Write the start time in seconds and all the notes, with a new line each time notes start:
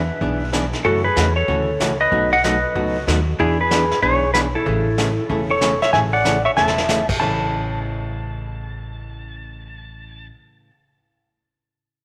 Already playing: B4 E5
0.21 B1 E3 B3 D4 G#4, brush sweep, kick
0.52 E3 B3 D4 G#4, snare, hi-hat pedal
0.73 snare
0.85 F#2 C#3 E3 A3 C#4 F#4 A4, brush sweep, kick
1.04 G#4 B4
1.16 E2 C#3 E3 A3 C#4 F#4, snare, hi-hat pedal
1.36 A4 C#5
1.48 D2 C#3 E3 A3 C#4 F#4, brush sweep, kick
1.80 C#2 C#3 E3 A3 C#4 F#4, snare, hi-hat pedal
2.01 B4 D#5
2.12 B1 B2 F#3 A3 D#4 F#4, brush sweep, kick
2.33 D#5 F#5
2.44 B2 F#3 A3 D#4 F#4 B4 D#5, snare, hi-hat pedal
2.75 C#2 B2 F#3 A3 D#4 F#4, brush sweep, kick
3.07 D#2 B2 F#3 A3 D#4 F#4, snare, hi-hat pedal
3.39 E2 E3 B3 D4 E4 G#4, brush sweep, kick
3.60 G#4 B4
3.71 E3 B3 D4 G#4, snare, hi-hat pedal
3.91 snare
4.02 B1 E3 B3 D4 G#4 C#5, brush sweep, kick
4.34 E3 B3 D4 G#4 B4, snare, hi-hat pedal
4.55 E4 A4
4.66 A1 C#3 E3 A3 C#4 G#4, brush sweep, kick
4.98 C#3 E3 A3 C#4 G#4, snare, hi-hat pedal
5.29 E1 C#3 E3 A3 C#4 G#4, brush sweep, kick
5.50 A4 C#5
5.61 C#3 E3 A3 C#4 G#4, snare, hi-hat pedal
5.82 C#5 E5, snare
5.93 A1 C#3 E3 A3 C#4 G#4 E5 G#5, brush sweep, kick, snare
6.13 D5 F#5
6.25 C#3 E3 A3 C#4 G#4, kick, snare, hi-hat pedal
6.45 C#5 E5
6.56 E1 C#3 E3 A3 C#4 G#4 E5 A5, snare
6.67 snare
6.78 snare
6.88 C#3 E3 A3 C#4 G#4, snare, hi-hat pedal
7.09 kick, crash
7.19 A1 A2 C#3 E3 A3 C#4 A5